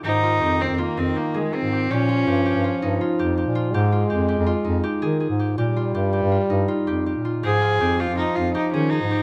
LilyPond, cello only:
\new Staff \with { instrumentName = "Cello" } { \time 5/4 \key aes \major \tempo 4 = 162 ees'4. c'16. c'32 bes8 c'8 bes8 aes8 c'4 | des'2. r2 | r1 r4 | r1 r4 |
aes'4. f'8 ees'8 f'8 ees'8 des'8 ees'4 | }